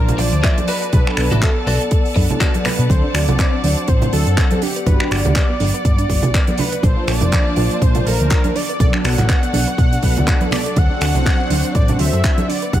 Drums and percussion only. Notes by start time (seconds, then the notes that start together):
0.09 closed hi-hat, low conga
0.18 open hi-hat, high conga
0.33 closed hi-hat
0.44 kick, clap, closed hi-hat
0.58 closed hi-hat, high conga
0.68 open hi-hat
0.82 closed hi-hat
0.93 kick, closed hi-hat, high conga
1.07 finger snap
1.17 finger snap, open hi-hat
1.31 closed hi-hat, high conga, low conga
1.42 kick, clap, closed hi-hat
1.67 open hi-hat, high conga
1.81 closed hi-hat
1.91 kick, closed hi-hat
2.05 open hi-hat
2.16 kick, open hi-hat, high conga
2.30 closed hi-hat, low conga
2.41 kick, clap, closed hi-hat
2.54 closed hi-hat, high conga
2.65 finger snap, open hi-hat, low conga
2.80 closed hi-hat
2.90 kick, closed hi-hat, high conga
3.14 finger snap, open hi-hat
3.28 closed hi-hat, high conga, low conga
3.39 kick, clap, closed hi-hat
3.64 open hi-hat, high conga
3.77 closed hi-hat
3.88 kick, closed hi-hat
4.02 closed hi-hat, low conga
4.13 open hi-hat, high conga
4.27 closed hi-hat
4.37 kick, clap, closed hi-hat
4.51 closed hi-hat, high conga
4.62 open hi-hat
4.76 closed hi-hat
4.86 kick, closed hi-hat, high conga
5.00 finger snap
5.11 finger snap, open hi-hat
5.25 closed hi-hat, high conga, low conga
5.36 kick, clap, closed hi-hat
5.60 open hi-hat, high conga
5.74 closed hi-hat
5.85 kick, closed hi-hat
5.98 closed hi-hat
6.09 kick, open hi-hat, high conga
6.22 closed hi-hat, low conga
6.34 kick, clap, closed hi-hat
6.47 closed hi-hat, high conga
6.58 open hi-hat, low conga
6.72 closed hi-hat
6.83 kick, closed hi-hat, high conga
7.08 finger snap, open hi-hat
7.21 closed hi-hat, high conga, low conga
7.32 kick, clap, closed hi-hat
7.56 open hi-hat, high conga
7.71 closed hi-hat
7.82 kick, closed hi-hat
7.95 closed hi-hat, low conga
8.05 open hi-hat, high conga
8.20 closed hi-hat
8.30 kick, clap, closed hi-hat
8.44 closed hi-hat, high conga
8.56 open hi-hat
8.69 closed hi-hat
8.80 kick, closed hi-hat, high conga
8.93 finger snap
9.04 finger snap, open hi-hat
9.18 clap, closed hi-hat, high conga, low conga
9.29 kick, clap, closed hi-hat
9.43 closed hi-hat
9.53 open hi-hat, high conga
9.67 closed hi-hat
9.78 kick, closed hi-hat
9.93 closed hi-hat
10.03 kick, open hi-hat, high conga
10.17 closed hi-hat, low conga
10.27 kick, clap, closed hi-hat
10.41 closed hi-hat, high conga
10.51 finger snap, open hi-hat, low conga
10.66 closed hi-hat
10.76 kick, closed hi-hat, high conga
11.01 finger snap, open hi-hat
11.15 closed hi-hat, high conga, low conga
11.26 kick, clap, closed hi-hat
11.50 open hi-hat, high conga
11.64 closed hi-hat
11.75 kick, closed hi-hat
11.88 closed hi-hat, low conga
11.99 open hi-hat, high conga
12.13 closed hi-hat
12.24 kick, clap, closed hi-hat
12.38 closed hi-hat, high conga
12.50 open hi-hat
12.62 closed hi-hat
12.73 kick, closed hi-hat, high conga